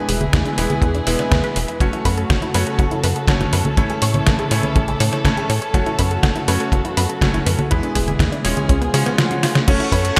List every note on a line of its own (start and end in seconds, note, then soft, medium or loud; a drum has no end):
0.00 1.79 B2 medium
0.00 1.79 E3 medium
0.00 0.55 G#3 medium
0.00 1.79 G#3 medium
0.00 0.55 B3 medium
0.00 0.55 E4 medium
0.00 1.79 E4 medium
0.00 1.79 G#4 medium
0.00 0.55 B4 medium
0.09 0.28 E1 medium
0.09 0.15 G#4 loud
0.09 open hi-hat loud
0.21 0.32 G#4 medium
0.21 closed hi-hat soft
0.21 high conga medium
0.33 0.43 E2 medium
0.33 0.44 E4 medium
0.33 kick loud
0.33 snare loud
0.33 closed hi-hat medium
0.46 0.57 D4 medium
0.46 closed hi-hat soft
0.58 0.68 E1 medium
0.58 0.88 G#3 medium
0.58 0.88 B3 medium
0.58 0.88 E4 medium
0.58 0.64 G#4 loud
0.58 0.88 B4 loud
0.58 open hi-hat loud
0.70 0.81 G#4 medium
0.70 closed hi-hat soft
0.70 high conga medium
0.82 1.02 E2 loud
0.82 0.93 E4 medium
0.82 kick loud
0.82 closed hi-hat medium
0.95 1.06 D4 medium
0.95 closed hi-hat soft
1.07 1.17 E1 loud
1.07 1.78 G#3 loud
1.07 1.78 B3 medium
1.07 1.78 E4 medium
1.07 1.78 B4 loud
1.07 1.18 E5 medium
1.07 open hi-hat loud
1.19 1.30 D4 medium
1.19 snare soft
1.19 closed hi-hat soft
1.31 1.41 E2 medium
1.31 1.38 B4 medium
1.31 kick loud
1.31 snare loud
1.31 closed hi-hat medium
1.44 1.51 B4 loud
1.44 closed hi-hat soft
1.56 1.66 E1 loud
1.56 1.67 B4 medium
1.56 open hi-hat medium
1.68 1.80 E4 medium
1.68 closed hi-hat soft
1.80 1.90 F#1 loud
1.80 3.76 C#3 medium
1.80 3.76 F#3 medium
1.80 2.52 A3 medium
1.80 3.76 A3 medium
1.80 2.52 C#4 medium
1.80 2.52 F#4 medium
1.80 1.92 F#4 medium
1.80 3.76 F#4 medium
1.80 7.67 A4 medium
1.80 2.52 C#5 medium
1.80 kick loud
1.80 closed hi-hat medium
1.93 2.04 E4 medium
1.93 closed hi-hat soft
2.05 2.25 F#2 medium
2.05 2.12 B4 loud
2.05 kick medium
2.05 open hi-hat loud
2.18 2.29 A4 medium
2.18 closed hi-hat soft
2.30 2.40 F#1 medium
2.30 2.41 F#4 medium
2.30 kick loud
2.30 snare loud
2.30 closed hi-hat medium
2.42 2.53 E4 medium
2.42 closed hi-hat soft
2.54 2.64 F#2 medium
2.54 2.85 A3 medium
2.54 2.85 C#4 medium
2.54 2.85 F#4 medium
2.54 2.61 B4 loud
2.54 2.85 C#5 loud
2.54 open hi-hat loud
2.67 2.78 A4 medium
2.67 closed hi-hat soft
2.79 2.89 F#1 loud
2.79 2.90 F#4 medium
2.79 kick loud
2.79 closed hi-hat medium
2.91 3.02 E4 medium
2.91 closed hi-hat soft
3.04 3.14 F#2 medium
3.04 3.10 B4 loud
3.04 open hi-hat loud
3.16 3.27 A4 medium
3.16 closed hi-hat soft
3.27 3.48 F#1 medium
3.27 3.75 A3 medium
3.27 3.75 C#4 medium
3.27 3.75 F#4 medium
3.27 3.39 F#4 medium
3.27 3.75 C#5 loud
3.27 kick loud
3.27 snare loud
3.27 closed hi-hat medium
3.41 3.52 E4 medium
3.41 snare soft
3.41 closed hi-hat soft
3.41 high conga medium
3.53 3.63 F#2 medium
3.53 3.60 B4 loud
3.53 open hi-hat loud
3.65 3.76 A4 medium
3.65 closed hi-hat soft
3.65 high conga medium
3.77 3.87 A1 loud
3.77 5.72 C#3 medium
3.77 5.72 E3 medium
3.77 4.48 A3 medium
3.77 7.67 A3 medium
3.77 4.48 C#4 medium
3.77 4.48 E4 medium
3.77 5.72 E4 medium
3.77 3.89 A4 medium
3.77 4.48 C#5 medium
3.77 kick loud
3.77 closed hi-hat medium
3.90 4.01 G#4 medium
3.90 closed hi-hat soft
4.02 4.22 A2 medium
4.02 4.09 C#5 loud
4.02 open hi-hat loud
4.14 4.26 C#5 medium
4.14 closed hi-hat soft
4.14 high conga medium
4.27 4.37 A1 medium
4.27 4.38 A4 medium
4.27 kick loud
4.27 snare loud
4.27 closed hi-hat medium
4.39 4.50 G#4 medium
4.39 closed hi-hat soft
4.51 4.61 A2 medium
4.51 4.81 A3 medium
4.51 4.81 C#4 medium
4.51 4.81 E4 medium
4.51 4.81 C#5 loud
4.51 4.58 C#5 loud
4.51 open hi-hat loud
4.63 4.75 C#5 medium
4.63 closed hi-hat soft
4.63 high conga medium
4.76 4.95 A1 medium
4.76 4.87 A4 medium
4.76 kick loud
4.76 closed hi-hat medium
4.88 4.99 G#4 medium
4.88 closed hi-hat soft
5.00 5.10 A2 loud
5.00 5.07 C#5 loud
5.00 open hi-hat loud
5.13 5.24 C#5 medium
5.13 snare soft
5.13 closed hi-hat soft
5.25 5.35 A1 medium
5.25 5.71 A3 medium
5.25 5.71 C#4 medium
5.25 5.71 E4 medium
5.25 5.36 A4 medium
5.25 5.71 C#5 loud
5.25 kick loud
5.25 snare loud
5.25 closed hi-hat medium
5.37 5.48 G#4 medium
5.37 closed hi-hat soft
5.50 5.59 A2 loud
5.50 5.56 C#5 loud
5.50 open hi-hat loud
5.62 5.73 C#5 medium
5.62 closed hi-hat soft
5.74 5.84 F#1 loud
5.74 7.69 C#3 medium
5.74 7.69 F#3 medium
5.74 6.45 A3 medium
5.74 6.45 C#4 medium
5.74 6.45 F#4 medium
5.74 5.85 F#4 medium
5.74 7.69 F#4 medium
5.74 6.45 C#5 medium
5.74 kick loud
5.74 closed hi-hat medium
5.86 5.97 E4 medium
5.86 closed hi-hat soft
5.99 6.19 F#2 medium
5.99 6.05 B4 loud
5.99 kick medium
5.99 open hi-hat loud
6.11 6.22 A4 medium
6.11 closed hi-hat soft
6.23 6.33 F#1 medium
6.23 6.34 F#4 medium
6.23 kick loud
6.23 snare loud
6.23 closed hi-hat medium
6.36 6.47 E4 medium
6.36 closed hi-hat soft
6.48 6.58 F#2 medium
6.48 6.78 A3 medium
6.48 6.78 C#4 medium
6.48 6.78 F#4 medium
6.48 6.55 B4 loud
6.48 6.78 C#5 loud
6.48 open hi-hat loud
6.60 6.71 A4 medium
6.60 closed hi-hat soft
6.72 6.82 F#1 loud
6.72 6.84 F#4 medium
6.72 kick loud
6.72 closed hi-hat medium
6.85 6.96 E4 medium
6.85 closed hi-hat soft
6.97 7.07 F#2 medium
6.97 7.04 B4 loud
6.97 open hi-hat loud
7.09 7.20 A4 medium
7.09 closed hi-hat soft
7.21 7.41 F#1 medium
7.21 7.68 A3 medium
7.21 7.68 C#4 medium
7.21 7.68 F#4 medium
7.21 7.33 F#4 medium
7.21 7.68 C#5 loud
7.21 kick loud
7.21 snare loud
7.21 closed hi-hat medium
7.34 7.45 E4 medium
7.34 snare soft
7.34 closed hi-hat soft
7.34 high conga medium
7.46 7.56 F#2 medium
7.46 7.53 B4 loud
7.46 open hi-hat loud
7.59 7.70 A4 medium
7.59 closed hi-hat soft
7.59 high conga medium
7.71 7.81 E2 loud
7.71 8.68 B2 medium
7.71 8.68 E3 medium
7.71 8.42 G#3 medium
7.71 9.66 G#3 medium
7.71 8.42 B3 medium
7.71 7.82 E4 medium
7.71 8.42 E4 medium
7.71 8.68 E4 medium
7.71 9.66 G#4 medium
7.71 8.42 B4 medium
7.71 kick loud
7.71 closed hi-hat medium
7.83 7.94 D4 medium
7.83 closed hi-hat soft
7.95 8.15 E1 medium
7.95 8.02 G#4 loud
7.95 kick medium
7.95 open hi-hat loud
8.08 8.19 G#4 medium
8.08 closed hi-hat soft
8.08 high conga medium
8.19 8.30 E2 medium
8.19 8.31 E4 medium
8.19 kick loud
8.19 snare loud
8.19 closed hi-hat medium
8.32 8.43 D4 medium
8.32 closed hi-hat soft
8.44 8.55 E1 medium
8.44 8.75 G#3 medium
8.44 8.75 C#4 medium
8.44 8.75 F4 medium
8.44 8.51 G#4 loud
8.44 8.75 C#5 loud
8.44 open hi-hat loud
8.57 8.68 G#4 medium
8.57 closed hi-hat soft
8.57 high conga medium
8.69 8.89 C#2 medium
8.69 9.67 C#3 medium
8.69 9.67 F3 medium
8.69 8.80 C#4 medium
8.69 9.67 F4 medium
8.69 kick loud
8.69 closed hi-hat medium
8.69 swell medium
8.81 8.92 B3 medium
8.81 closed hi-hat soft
8.94 9.04 C#3 medium
8.94 9.65 G#3 loud
8.94 9.05 C#4 medium
8.94 9.65 C#4 medium
8.94 9.65 F4 medium
8.94 9.65 C#5 loud
8.94 open hi-hat loud
9.06 9.13 B3 loud
9.06 snare soft
9.06 closed hi-hat soft
9.18 9.29 F4 medium
9.18 snare loud
9.18 closed hi-hat medium
9.31 9.42 C#3 medium
9.31 closed hi-hat soft
9.43 9.50 F4 loud
9.43 snare medium
9.43 open hi-hat loud
9.55 9.62 C#3 medium
9.55 snare loud
9.55 closed hi-hat soft
9.67 9.78 F#1 loud
9.67 9.83 A3 medium
9.67 10.20 A3 medium
9.67 10.20 C#4 medium
9.67 9.83 C#4 loud
9.67 9.79 F#4 medium
9.67 10.20 F#4 medium
9.67 10.20 C#5 medium
9.67 10.20 F#5 medium
9.67 10.20 A5 medium
9.67 10.20 C#6 medium
9.67 kick loud
9.67 closed hi-hat medium
9.67 crash loud
9.80 9.91 E4 medium
9.80 closed hi-hat soft
9.92 10.12 F#2 medium
9.92 10.15 A3 medium
9.92 10.15 C#4 medium
9.92 9.99 B4 loud
9.92 kick medium
9.92 open hi-hat loud
10.04 10.16 A4 medium
10.04 closed hi-hat medium